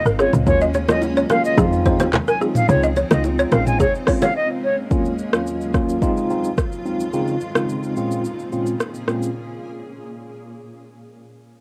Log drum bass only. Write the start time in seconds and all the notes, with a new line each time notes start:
0.06 G#1
0.33 C#2
0.47 D#2
1.58 F2
2.00 D#2
2.69 C#2
3.11 C#2
3.52 A#1